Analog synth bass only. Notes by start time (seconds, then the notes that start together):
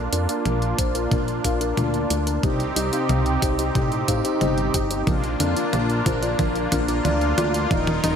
0.13 F2
0.46 A#1
0.79 A#1
1.11 A#1
1.44 A#1
1.77 D2
2.10 D2
2.43 C2
2.76 C2
3.09 C2
3.42 C2
3.75 A2
4.08 A2
4.41 G1
4.74 G1
5.07 A#1
5.40 F2
5.73 A#1
6.06 A#1
6.39 A#1
6.72 A#1
7.05 D2
7.38 D2
7.71 D#1
8.04 D#1